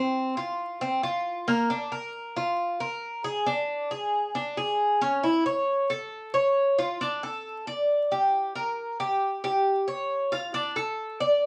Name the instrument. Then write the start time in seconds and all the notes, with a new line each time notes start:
cuban tres
Already playing: C4
0.37 F4
0.81 C4
1.03 F4
1.48 A#3
1.70 D4
1.92 A#4
2.36 F4
2.80 A#4
3.24 G#4
3.47 D4
3.91 G#4
4.35 D4
4.57 G#4
5.01 C#4
5.23 E4
5.46 C#5
5.90 A4
6.34 C#5
6.78 F4
7.01 D4
7.23 A4
7.67 D5
8.11 G4
8.55 A#4
9.00 G4
9.44 G4
9.88 C#5
10.32 F4
10.54 D4
10.76 A4
11.20 D5